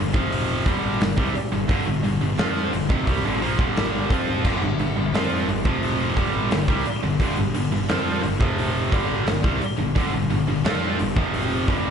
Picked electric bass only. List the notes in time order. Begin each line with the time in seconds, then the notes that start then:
0.00 G1
0.14 F1
0.66 G1
1.00 G1
1.18 C2
1.36 muted picked electric bass stroke
1.52 G1
1.69 G1
1.87 G1
2.05 G1
2.22 G1
2.39 F2
2.73 G1
2.90 F1
3.07 C2
3.25 G1
3.41 A#1
3.59 G1
4.11 F2
4.45 G1
4.62 G1
4.78 G1
4.96 G1
5.12 F2
5.47 G1
5.65 F1
6.17 G1
6.51 G1
6.68 C2
6.86 muted picked electric bass stroke
7.04 G1
7.20 G1
7.38 G1
7.55 G1
7.72 G1
7.90 F2
8.24 G1
8.41 F1
8.92 G1
9.27 G1
9.44 C2
9.61 muted picked electric bass stroke
9.78 G1
9.96 G1
10.13 G1
10.31 G1
10.49 G1
10.65 F2
11.01 G1
11.17 F1
11.68 G1